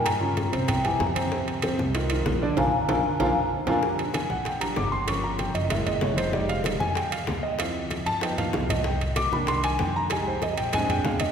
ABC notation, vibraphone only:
X:1
M:4/4
L:1/16
Q:1/4=191
K:Gphr
V:1 name="Vibraphone"
b8 g2 a2 b3 z | z16 | [fab]2 z2 [fab]2 z2 [fab]2 z4 [fab]2 | z16 |
z16 | z16 | z16 | z16 |
z16 |]